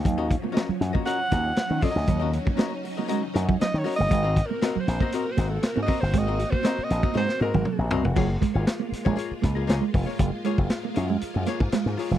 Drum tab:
CC |----------------|----------------|----------------|----------------|
HH |x-x-x-x-x-x-x-o-|x-x-x-o-x-x-x-o-|x-x-x-x-x-x-x-o-|x-x-x-x---------|
SD |----o-o---o-o--o|----o-----o-ooo-|----o-o---o-o--o|----o-o-oo------|
T1 |----------------|----------------|----------------|-----------o----|
T2 |----------------|----------------|----------------|------------o---|
FT |----------------|----------------|----------------|--------------oo|
BD |o-o----o--o---o-|o--o-------o----|o-o----o--o---o-|o--o---o--------|

CC |x---------------|----------------|
HH |--x-x-x-x-x-x-o-|x-x-x-x-x-x-x-o-|
SD |----o-o---o-o--o|----o-----o-oooo|
T1 |----------------|----------------|
T2 |----------------|----------------|
FT |----------------|----------------|
BD |o-o----o--o---o-|o--o-------o----|